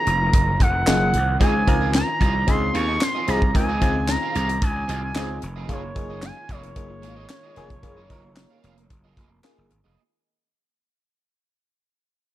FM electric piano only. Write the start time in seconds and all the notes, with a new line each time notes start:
0.86 A#3 D#4 F4 G#4
1.40 C4 D#4 F4 G#4
1.67 C4 D#4 F4 A#4
2.47 C4 D#4 F4 G#4
3.28 C4 D#4 F4 G#4
3.54 C4 D#4 F4 A#4
3.81 C4 D#4 F4 G#4
5.15 C4 D#4 F4 G#4
5.68 A#3 D#4 F4 G#4
5.95 A#3 D#4 F4 G#4
6.76 A#3 D#4 F4 G#4
7.57 A#3 D#4 F4 G#4
7.83 A#3 D#4 F4 G#4
8.10 A#3 D#4 F4 A#4
9.43 A#3 D#4 F4 G#4